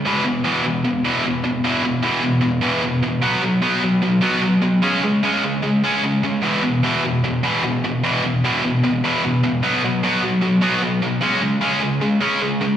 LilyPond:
\new Staff \with { instrumentName = "Distorted electric guitar" } { \clef bass \time 4/4 \key e \major \tempo 4 = 150 <e, b, e>8 <e, b,>8 <e, b, e>8 <e, b,>8 <e, b,>8 <e, b, e>8 <e, b,>8 <e, b,>8 | <e, b, e>8 <e, b,>8 <e, b, e>8 <e, b,>8 <e, b,>8 <e, b, e>8 <e, b,>8 <e, b,>8 | <b, fis b>8 <b, fis>8 <b, fis b>8 <b, fis>8 <b, fis>8 <b, fis b>8 <b, fis>8 <b, fis>8 | <cis gis cis'>8 <cis gis>8 <cis gis cis'>8 <cis gis>8 <cis gis>8 <cis gis cis'>8 <cis gis>8 <cis gis>8 |
<e, b, e>8 <e, b,>8 <e, b, e>8 <e, b,>8 <e, b,>8 <e, b, e>8 <e, b,>8 <e, b,>8 | <e, b, e>8 <e, b,>8 <e, b, e>8 <e, b,>8 <e, b,>8 <e, b, e>8 <e, b,>8 <e, b,>8 | <b, fis b>8 <b, fis>8 <b, fis b>8 <b, fis>8 <b, fis>8 <b, fis b>8 <b, fis>8 <b, fis>8 | <cis gis cis'>8 <cis gis>8 <cis gis cis'>8 <cis gis>8 <cis gis>8 <cis gis cis'>8 <cis gis>8 <cis gis>8 | }